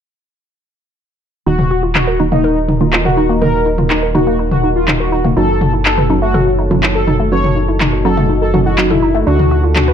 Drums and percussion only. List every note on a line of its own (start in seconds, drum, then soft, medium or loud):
1.59 mid tom medium
1.95 clap loud
1.95 mid tom medium
2.32 mid tom medium
2.68 mid tom medium
2.93 clap loud
3.05 mid tom medium
3.42 mid tom medium
3.78 mid tom medium
3.90 clap loud
4.15 mid tom medium
4.51 mid tom medium
4.88 clap loud
4.88 mid tom medium
5.25 mid tom medium
5.61 mid tom medium
5.85 clap loud
5.98 mid tom medium
6.34 mid tom medium
6.71 mid tom medium
6.83 clap loud
7.07 mid tom medium
7.44 mid tom medium
7.81 clap loud
7.81 mid tom medium
8.17 mid tom medium
8.54 mid tom medium
8.78 clap loud
8.90 mid tom medium
9.39 mid tom medium
9.76 clap loud
9.76 mid tom medium